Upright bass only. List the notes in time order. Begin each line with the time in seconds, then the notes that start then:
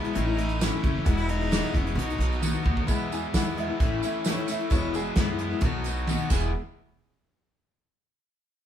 0.16 A1
0.83 F#1
1.06 E1
1.74 E1
1.95 B1
2.18 B1
2.66 D#2
2.88 E2
3.33 E2
3.80 A1
4.71 E1
5.16 F#2
5.61 B1
6.31 E1